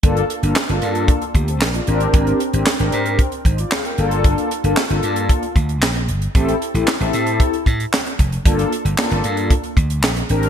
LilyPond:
<<
  \new Staff \with { instrumentName = "Analog polysynth" } { \time 4/4 \key g \dorian \tempo 4 = 114 << { r2 r8 <bes g'>16 <c' a'>16 <d' bes'>16 <f' d''>8 r16 | r2 r8 <ees' c''>16 <f' d''>16 <aes' f''>16 <bes' g''>8 r16 | r1 | r1 |
r1 | } \\ { <bes d' f' a'>8 r16 <bes d' f' a'>16 r16 <bes d' f' a'>4 r4 r16 <c' d' g' bes'>8~ | <c' d' g' bes'>8 r16 <c' d' g' bes'>16 r16 <c' d' g' bes'>4 r4 r16 <bes d' f' a'>8~ | <bes d' f' a'>8 r16 <bes d' f' a'>16 r16 <bes d' f' a'>4 r4. r16 | <c' e' g' a'>8 r16 <c' e' g' a'>16 r16 <c' e' g' a'>4 r4. r16 |
<bes d' f' a'>8 r8 <bes d' f' a'>4 r4. <c' d' g' bes'>8 | } >> }
  \new Staff \with { instrumentName = "Slap bass" } { \clef bass \time 4/4 \key g \dorian g,,8 r16 g,,16 r16 g,,16 g,8. r16 d,8 bes,,8 aes,,8 | aes,,8 r16 aes,,16 r16 aes,,16 aes,8. r16 aes,,8 r8 g,,8~ | g,,8 r16 g,,16 r16 g,,16 g,8. r16 d,8 bes,,8 g,,8 | a,,8 r16 a,,16 r16 a,,16 a,8. r16 a,8 r8 f,,8 |
g,,8 r16 g,,16 r16 g,,16 g,8. r16 d,8 bes,,8 aes,,8 | }
  \new DrumStaff \with { instrumentName = "Drums" } \drummode { \time 4/4 <hh bd>16 hh16 hh16 hh16 <hc sn>16 hh16 hh16 hh16 <hh bd>16 hh16 <hh bd>16 hh16 <hc sn>16 hh16 hh16 hh16 | <hh bd>16 hh16 hh16 hh16 <hc sn>16 hh16 hh16 hh16 <hh bd>16 hh16 <hh bd>16 hh16 <hc sn>16 hh16 hh16 hh16 | <hh bd>16 hh16 hh16 hh16 <hc sn>16 hh16 hh16 hh16 <hh bd>16 hh16 <hh bd>16 hh16 <hc sn>16 hh16 hh16 hh16 | <hh bd>16 hh16 hh16 hh16 <hc sn>16 hh16 hh16 hh16 <hh bd>16 hh16 <hh bd>16 hh16 <hc sn>16 hh16 <hh bd>16 hh16 |
<hh bd>16 hh16 hh16 hh16 <hc sn>16 hh16 hh16 hh16 <hh bd>16 hh16 <hh bd>16 hh16 <hc sn>16 hh16 hh16 hh16 | }
>>